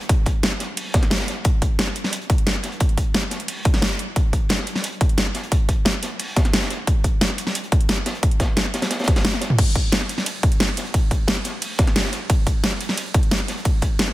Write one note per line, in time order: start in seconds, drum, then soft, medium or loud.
0.01 closed hi-hat soft
0.09 kick loud
0.09 closed hi-hat medium
0.26 kick medium
0.26 closed hi-hat medium
0.43 snare loud
0.43 closed hi-hat medium
0.43 closed hi-hat loud
0.52 snare soft
0.60 snare medium
0.60 closed hi-hat medium
0.77 closed hi-hat loud
0.77 open hi-hat medium
0.94 kick loud
0.94 snare loud
0.94 closed hi-hat medium
1.02 snare soft
1.02 closed hi-hat soft
1.10 snare medium
1.10 snare loud
1.10 closed hi-hat medium
1.15 snare medium
1.15 closed hi-hat medium
1.20 snare loud
1.20 closed hi-hat medium
1.28 snare medium
1.28 closed hi-hat medium
1.44 kick loud
1.44 closed hi-hat medium
1.62 kick medium
1.62 closed hi-hat medium
1.79 snare loud
1.79 closed hi-hat medium
1.87 snare medium
1.87 snare soft
1.95 closed hi-hat medium
2.04 snare soft
2.13 closed hi-hat medium
2.22 closed hi-hat soft
2.30 kick loud
2.30 closed hi-hat medium
2.38 closed hi-hat soft
2.47 snare loud
2.47 closed hi-hat medium
2.55 snare soft
2.63 snare medium
2.63 closed hi-hat medium
2.72 closed hi-hat soft
2.80 kick loud
2.80 closed hi-hat loud
2.80 closed hi-hat medium
2.89 closed hi-hat soft
2.98 kick medium
2.98 closed hi-hat medium
3.14 snare loud
3.14 closed hi-hat medium
3.23 snare soft
3.31 snare medium
3.31 closed hi-hat medium
3.40 closed hi-hat soft
3.48 closed hi-hat medium
3.48 open hi-hat medium
3.65 kick loud
3.65 closed hi-hat medium
3.73 snare soft
3.73 closed hi-hat soft
3.82 snare loud
3.82 closed hi-hat medium
3.99 closed hi-hat medium
4.16 kick loud
4.16 closed hi-hat medium
4.33 kick medium
4.33 closed hi-hat medium
4.49 snare loud
4.49 closed hi-hat loud
4.49 closed hi-hat medium
4.59 snare medium
4.59 snare soft
4.67 closed hi-hat medium
4.75 snare soft
4.84 closed hi-hat medium
4.84 closed hi-hat loud
4.92 closed hi-hat soft
5.01 kick loud
5.01 closed hi-hat medium
5.09 closed hi-hat soft
5.18 snare loud
5.18 closed hi-hat medium
5.26 snare soft
5.34 snare medium
5.34 closed hi-hat medium
5.43 closed hi-hat soft
5.52 kick loud
5.52 closed hi-hat medium
5.52 closed hi-hat loud
5.69 kick medium
5.69 closed hi-hat medium
5.85 snare loud
5.85 closed hi-hat medium
5.94 snare soft
6.03 snare medium
6.03 closed hi-hat medium
6.19 closed hi-hat medium
6.19 open hi-hat medium
6.36 kick loud
6.36 snare loud
6.36 closed hi-hat medium
6.45 snare soft
6.45 closed hi-hat soft
6.53 snare medium
6.53 snare loud
6.53 closed hi-hat loud
6.53 closed hi-hat medium
6.58 snare medium
6.58 closed hi-hat medium
6.62 snare loud
6.62 closed hi-hat medium
6.70 snare soft
6.70 closed hi-hat medium
6.87 kick loud
6.87 closed hi-hat loud
6.87 closed hi-hat medium
7.04 kick medium
7.04 closed hi-hat medium
7.21 snare loud
7.21 closed hi-hat medium
7.30 snare medium
7.30 snare soft
7.38 closed hi-hat medium
7.47 snare soft
7.55 closed hi-hat loud
7.55 closed hi-hat medium
7.64 closed hi-hat soft
7.72 kick loud
7.72 closed hi-hat medium
7.81 closed hi-hat soft
7.89 snare loud
7.89 closed hi-hat medium
7.89 closed hi-hat loud
7.98 snare soft
8.06 snare loud
8.06 closed hi-hat medium
8.15 closed hi-hat soft
8.23 kick loud
8.23 closed hi-hat loud
8.23 closed hi-hat medium
8.31 closed hi-hat soft
8.40 kick medium
8.40 snare medium
8.40 closed hi-hat medium
8.57 snare loud
8.57 closed hi-hat medium
8.57 closed hi-hat loud
8.65 snare soft
8.74 snare loud
8.74 closed hi-hat medium
8.82 snare loud
8.82 snare soft
8.82 closed hi-hat medium
8.82 closed hi-hat soft
8.91 snare loud
8.91 closed hi-hat loud
8.91 closed hi-hat medium
8.99 snare medium
8.99 closed hi-hat medium
9.04 snare medium
9.04 closed hi-hat medium
9.08 kick loud
9.08 snare medium
9.08 closed hi-hat medium
9.16 snare soft
9.16 snare loud
9.16 snare soft
9.16 closed hi-hat soft
9.16 closed hi-hat medium
9.25 snare loud
9.25 closed hi-hat loud
9.25 high tom medium
9.32 snare soft
9.32 closed hi-hat medium
9.32 high tom medium
9.41 snare loud
9.41 closed hi-hat medium
9.50 mid tom medium
9.59 kick loud
9.59 closed hi-hat loud
9.59 closed hi-hat medium
9.59 crash loud
9.59 ride medium
9.75 kick medium
9.75 closed hi-hat medium
9.92 snare loud
9.92 closed hi-hat medium
9.92 ride medium
10.01 snare medium
10.01 snare soft
10.09 closed hi-hat medium
10.18 snare soft
10.26 closed hi-hat loud
10.26 closed hi-hat medium
10.26 ride medium
10.35 closed hi-hat soft
10.43 kick loud
10.43 closed hi-hat medium
10.52 closed hi-hat soft
10.60 snare loud
10.60 closed hi-hat loud
10.60 closed hi-hat medium
10.60 ride medium
10.69 snare soft
10.77 snare medium
10.77 closed hi-hat medium
10.85 closed hi-hat soft
10.94 kick loud
10.94 closed hi-hat medium
10.94 ride medium
11.11 kick medium
11.11 closed hi-hat medium
11.28 snare loud
11.28 closed hi-hat loud
11.28 closed hi-hat medium
11.28 ride medium
11.37 snare soft
11.44 snare medium
11.44 closed hi-hat medium
11.62 closed hi-hat loud
11.62 open hi-hat medium
11.62 ride medium
11.79 kick loud
11.79 snare loud
11.79 closed hi-hat medium
11.87 snare soft
11.87 closed hi-hat soft
11.96 snare loud
11.96 snare medium
11.96 closed hi-hat medium
11.96 closed hi-hat loud
11.96 ride medium
12.00 snare medium
12.00 closed hi-hat medium
12.05 snare loud
12.05 closed hi-hat medium
12.12 snare medium
12.12 closed hi-hat medium
12.30 kick loud
12.30 closed hi-hat medium
12.30 ride medium
12.47 kick medium
12.47 closed hi-hat medium
12.64 snare loud
12.64 closed hi-hat medium
12.64 ride medium
12.72 snare medium
12.72 snare soft
12.81 closed hi-hat medium
12.89 snare soft
12.97 closed hi-hat medium
12.97 ride medium
13.06 closed hi-hat soft
13.14 kick loud
13.14 closed hi-hat medium
13.23 closed hi-hat soft
13.31 snare loud
13.31 closed hi-hat medium
13.31 ride medium
13.40 snare soft
13.48 snare medium
13.48 closed hi-hat medium
13.57 closed hi-hat soft
13.65 kick loud
13.65 closed hi-hat medium
13.65 ride medium
13.82 kick medium
13.82 closed hi-hat medium
13.99 snare loud
13.99 closed hi-hat loud
13.99 closed hi-hat medium
13.99 ride medium
14.08 snare soft